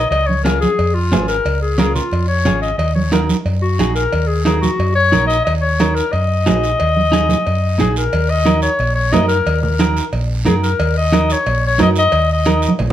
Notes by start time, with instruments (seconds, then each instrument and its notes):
0.10 fingered electric bass C#2, clarinet D#5, cowbell, high conga, long guiro
0.26 clarinet C#5, high conga
0.44 clean electric guitar C#4 F4 G#4, clarinet A#4, cowbell, high conga, short guiro
0.61 clarinet G#4, high conga, short guiro
0.79 fingered electric bass F2, cowbell, high conga, long guiro
0.94 clarinet F4
1.12 fingered electric bass G#1, clean electric guitar C#4 F4 G#4, cowbell, high conga, low timbale, short guiro
1.28 clarinet A#4, short guiro
1.45 fingered electric bass C#2, cowbell, high conga, long guiro
1.62 clarinet G#4
1.78 clean electric guitar C#4 F4 A#4, clarinet G#4, cowbell, high conga, short guiro
1.95 clarinet F4, low conga, short guiro
2.12 fingered electric bass F2, cowbell, high conga, long guiro
2.28 clarinet C#5
2.45 fingered electric bass G#1, clean electric guitar C#4 F4 G#4, cowbell, high conga, low conga, short guiro
2.62 clarinet D#5, short guiro
2.77 fingered electric bass D#2, clarinet D#5, cowbell, high conga, long guiro
2.95 clarinet C#5, high conga
3.12 clean electric guitar D#4 F#4 A#4, clarinet A#4, cowbell, high conga, short guiro
3.29 high conga, short guiro
3.45 fingered electric bass F#2, cowbell, high conga, long guiro
3.62 clarinet F#4
3.79 fingered electric bass A#1, clean electric guitar D#4 F#4 G#4, cowbell, high conga, short guiro
3.95 clarinet A#4, short guiro
4.13 fingered electric bass D#2, cowbell, high conga, long guiro
4.27 clarinet G#4
4.45 clean electric guitar D#4 F#4 A#4, clarinet G#4, cowbell, high conga, short guiro
4.61 clarinet F#4, high conga, low conga, short guiro
4.79 fingered electric bass F#2, cowbell, high conga, long guiro
4.95 clarinet C#5
5.12 fingered electric bass A#1, clean electric guitar D#4 F#4 A#4, cowbell, high conga, low conga, short guiro
5.27 clarinet D#5, short guiro
5.45 fingered electric bass D#2, clarinet D#5, cowbell, high conga, long guiro
5.61 clarinet C#5
5.80 clean electric guitar D#4 F#4 A#4, cowbell, high conga, short guiro
5.95 clarinet A#4, short guiro
6.12 fingered electric bass F#2, clarinet D#5, cowbell, high conga, long guiro
6.46 fingered electric bass A#1, clean electric guitar D#4 F#4 G#4, cowbell, high conga, low timbale, short guiro
6.63 short guiro
6.80 fingered electric bass D#2, cowbell, high conga, long guiro
6.97 high conga
7.12 clean electric guitar D#4 F#4 G#4, cowbell, high conga, short guiro
7.29 high conga, low conga, short guiro
7.47 fingered electric bass F#2, cowbell, high conga, long guiro
7.79 fingered electric bass A#1, clean electric guitar D#4 F#4 G#4, clarinet G#4, cowbell, high conga, low conga, short guiro
7.96 clarinet A#4, short guiro
8.13 fingered electric bass D#2, cowbell, high conga, long guiro
8.30 clarinet D#5
8.45 clean electric guitar D#4 F#4 A#4, cowbell, high conga, short guiro
8.62 clarinet C#5, short guiro
8.79 fingered electric bass A#1, cowbell, high conga, long guiro
8.95 clarinet C#5
9.12 fingered electric bass F#2, clean electric guitar D#4 F#4 A#4, clarinet D#5, cowbell, high conga, low timbale, short guiro
9.28 clarinet A#4, short guiro
9.46 fingered electric bass D#2, cowbell, high conga, long guiro
9.62 clarinet A#4, low conga
9.79 clean electric guitar D#4 F#4 A#4, cowbell, high conga, short guiro
9.97 short guiro
10.13 fingered electric bass A#1, cowbell, high conga, long guiro
10.45 fingered electric bass F#2, clean electric guitar D#4 F#4 A#4, clarinet G#4, cowbell, high conga, low conga, short guiro
10.63 clarinet A#4, short guiro
10.79 fingered electric bass D#2, cowbell, high conga, long guiro
10.97 clarinet D#5
11.12 clean electric guitar D#4 F#4 A#4, cowbell, high conga, short guiro
11.30 clarinet C#5, short guiro
11.46 fingered electric bass A#1, cowbell, high conga, long guiro
11.66 clarinet C#5
11.79 fingered electric bass F#2, clean electric guitar D#4 F#4 A#4, clarinet D#5, cowbell, high conga, low timbale, short guiro
11.96 clarinet D#5, short guiro
12.12 fingered electric bass D#2, cowbell, high conga, long guiro
12.33 clarinet D#5
12.46 clean electric guitar D#4 F#4 A#4, cowbell, high conga, short guiro
12.62 short guiro
12.68 high conga
12.79 fingered electric bass A#1, cowbell, low conga, long guiro